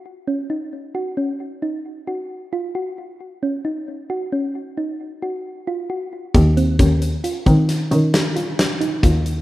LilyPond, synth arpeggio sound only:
\new Staff \with { instrumentName = "Synth arpeggio sound" } { \time 7/4 \key ees \dorian \tempo 4 = 134 r8 des'8 ees'4 ges'8 des'4 ees'4 ges'4 f'8 ges'4 | r8 des'8 ees'4 ges'8 des'4 ees'4 ges'4 f'8 ges'4 | r8 c'8 des'4 f'8 c'4 des'4 f'4 ees'8 f'4 | }